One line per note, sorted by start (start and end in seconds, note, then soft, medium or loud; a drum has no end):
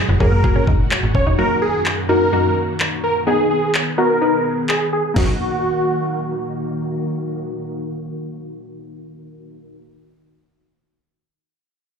0.00 1.36 A#2 medium
0.00 1.36 G#3 medium
0.00 3.23 F#4 medium
0.09 0.17 F#1 loud
0.20 0.44 F#2 loud
0.20 0.31 A#3 medium
0.20 0.29 C#4 medium
0.20 0.31 F#4 medium
0.20 0.31 G#4 medium
0.20 0.65 A#4 medium
0.20 kick medium
0.32 0.41 A#3 medium
0.44 0.87 A#3 medium
0.44 0.87 F#4 medium
0.44 0.87 G#4 medium
0.44 muted clean electric guitar stroke soft
0.44 kick medium
0.56 0.65 C#4 medium
0.67 0.83 F#1 medium
0.67 0.77 D#4 medium
0.67 kick medium
0.91 muted clean electric guitar stroke soft
0.91 clap loud
1.03 1.11 G#1 medium
1.15 1.23 E1 loud
1.15 1.24 C#4 medium
1.15 1.24 C#5 medium
1.15 kick medium
1.27 1.35 F1 medium
1.27 1.36 D#4 medium
1.38 1.71 F#2 medium
1.38 3.25 F#2 medium
1.38 5.12 D#3 medium
1.38 3.25 A#3 medium
1.38 1.71 A#3 medium
1.38 1.71 D#4 medium
1.38 1.71 F#4 medium
1.38 1.57 A#4 loud
1.62 1.81 G#4 medium
1.86 clap loud
2.09 2.20 F#2 medium
2.09 2.20 A#3 medium
2.09 2.20 D#4 medium
2.09 2.20 F#4 medium
2.09 2.53 A#4 medium
2.32 2.76 F#2 medium
2.32 2.76 A#3 medium
2.32 2.76 D#4 medium
2.32 2.76 F#4 medium
2.80 clap loud
3.04 3.13 A#4 medium
3.27 3.60 B3 medium
3.27 5.14 B3 medium
3.27 3.60 D#4 medium
3.27 3.46 G#4 medium
3.27 5.14 G#4 medium
3.27 3.60 G#4 medium
3.51 3.70 G#4 medium
3.75 clap loud
3.98 4.09 B3 medium
3.98 4.09 D#4 medium
3.98 4.09 F#4 medium
3.98 4.42 A#4 medium
4.21 4.65 B3 medium
4.21 4.65 D#4 medium
4.21 4.65 B4 medium
4.69 4.78 G#4 medium
4.69 clap loud
4.93 5.02 G#4 medium
5.14 9.70 D#3 medium
5.14 9.82 A#3 medium
5.14 9.70 A#3 medium
5.14 9.84 D#4 medium
5.14 9.70 F#4 medium
5.14 6.54 F#4 medium
5.14 kick loud
5.14 snare medium
5.14 crash medium
5.18 9.86 F#4 medium